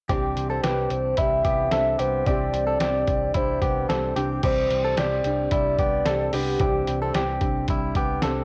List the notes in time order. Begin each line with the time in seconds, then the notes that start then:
0.09 C2 C3 E3 C4 D4 G4, kick, closed hi-hat
0.36 C2, closed hi-hat
0.50 C4 A4
0.63 C2 E3 C4 D4 G4 B4, snare, closed hi-hat
0.90 C2 C5, closed hi-hat
1.17 C2 E3 G3 C4 D4 E4 G4 E5, kick, closed hi-hat
1.45 C2 B3 G4, kick, closed hi-hat
1.71 C2 E3 C4 D4 G4 A4 E5, snare, closed hi-hat
1.99 C2 B3 G4 C5, closed hi-hat
2.25 C2 C3 E3 C4 D4 G4 D5, kick, closed hi-hat
2.30 G4
2.53 C2, closed hi-hat
2.67 C4 A4
2.80 C2 C4 G4, snare, closed hi-hat
3.08 C2, kick, closed hi-hat
3.34 C2 E3 G3 C4 D4 E4 G4 C5, kick, closed hi-hat
3.62 C2 B3 G4, kick, closed hi-hat
3.88 C2 E3 C4 D4 G4 A4, snare, closed hi-hat
4.16 C2 C3 E3 C4 D4 G4, closed hi-hat
4.43 C2 C3 E3 C4 D4 G4 C5, kick, closed hi-hat, crash
4.70 C2, closed hi-hat
4.84 C4 A4
4.97 C2 E3 C4 D4 G4 D5, snare, closed hi-hat
5.24 C2 C4 D4 G4, closed hi-hat
5.51 C2 G3 E4 D5, kick, closed hi-hat
5.78 C2 B3 G4, kick, closed hi-hat
6.05 C2 E3 C4 D4 G4 A4, snare, closed hi-hat
6.32 C2 B3 C4 D4 G4, open hi-hat
6.59 C2 C3 E3 C4 D4 G4, kick, closed hi-hat
6.87 C2, closed hi-hat
7.02 C4 A4
7.13 C2 E3 C4 D4 G4, snare, closed hi-hat
7.40 C2 C4 D4 G4, kick, closed hi-hat
7.68 C2 G3 E4, kick, closed hi-hat
7.95 C2 B3 G4, kick, closed hi-hat
8.21 C2 E3 C4 D4 G4 A4, snare, closed hi-hat